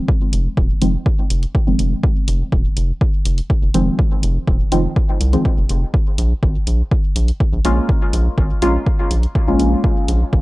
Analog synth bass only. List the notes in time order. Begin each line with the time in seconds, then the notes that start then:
0.33 F1
0.57 D#1
0.82 F1
1.30 F1
1.67 F1
1.79 F1
2.28 F1
2.52 D#1
2.77 F1
3.26 F1
3.62 F1
3.74 F1
4.23 F1
4.48 D#1
4.72 F1
5.21 C2
5.57 F1
5.69 F1
6.18 A#1
6.43 G#1
6.67 A#1
7.16 A#1
7.53 A#1
7.65 A#1
8.13 A#1
8.38 G#1
8.62 A#1
9.11 A#1
9.48 A#1
9.60 A#1
10.08 A#1
10.33 G#1